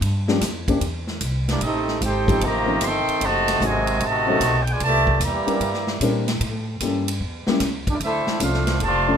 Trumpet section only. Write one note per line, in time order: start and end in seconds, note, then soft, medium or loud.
1.50 1.62 A#3 medium
1.50 1.62 E4 medium
1.50 1.62 G4 medium
1.50 1.62 D5 medium
1.63 2.00 C4 medium
1.63 2.00 G4 medium
1.63 2.00 A4 medium
1.63 1.99 D#5 loud
2.05 2.43 D#4 medium
2.05 2.43 A4 medium
2.05 2.43 C5 medium
2.05 2.43 G5 loud
2.45 2.83 G4 loud
2.45 2.83 C5 medium
2.45 2.83 D#5 loud
2.45 2.83 A#5 loud
2.85 3.23 A4 medium
2.85 3.23 D#5 loud
2.85 3.23 G5 loud
2.85 3.23 C6 loud
3.24 3.63 F#4 loud
3.24 3.63 C5 loud
3.24 3.63 D#5 loud
3.24 3.63 A5 loud
3.65 4.03 F#4 medium
3.65 4.03 C5 medium
3.65 4.03 D#5 medium
3.65 4.03 G#5 loud
4.06 4.64 F#4 loud
4.06 4.64 C5 medium
4.06 4.64 D#5 loud
4.06 4.64 A5 loud
4.63 4.69 G5 medium
4.71 4.83 F4 medium
4.71 4.83 B4 medium
4.71 4.83 D5 medium
4.71 4.83 G#5 medium
4.84 5.20 G4 medium
4.84 5.20 D5 loud
4.84 5.20 E5 medium
4.84 5.20 A5 loud
5.25 6.03 G4 medium
5.25 6.03 D5 medium
5.25 6.03 E5 medium
5.25 6.03 A#5 loud
7.91 7.96 A#3 medium
7.91 7.96 E4 medium
7.91 7.96 G4 medium
7.91 7.96 D5 medium
8.04 8.40 D4 medium
8.04 8.40 A4 medium
8.04 8.39 C5 medium
8.04 8.40 E5 medium
8.43 8.82 D4 medium
8.43 8.82 A4 medium
8.43 8.82 C5 medium
8.43 8.82 F5 medium
8.84 9.17 F4 medium
8.84 9.17 C5 medium
8.84 9.17 D5 medium
8.84 9.17 A5 loud